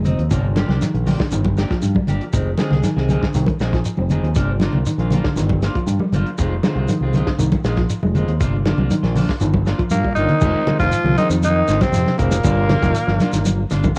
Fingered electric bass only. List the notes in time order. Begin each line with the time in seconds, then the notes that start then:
Already playing: F1
0.18 D#2
0.31 G1
0.68 C2
0.94 A#1
1.32 G1
1.71 muted fingered electric bass stroke
1.82 G2
2.08 G1
2.33 F1
2.71 C2
2.96 C2
3.34 C2
3.60 A#1
3.97 F1
4.22 D#2
4.36 G1
4.73 C2
4.98 A#1
5.36 G1
5.87 G2
6.12 G1
6.39 F1
6.76 C2
7.01 C2
7.38 C2
7.64 A#1
8.03 F1
8.28 D#2
8.41 G1
8.78 C2
9.03 A#1
9.41 G1
9.91 G2
10.17 G1
10.42 F1
10.67 muted fingered electric bass stroke
10.80 F1
11.04 C2
11.30 F2
11.68 G#1
11.92 F2
12.19 F1
12.44 G1
12.82 F1
13.08 G1
13.33 G1
13.71 G1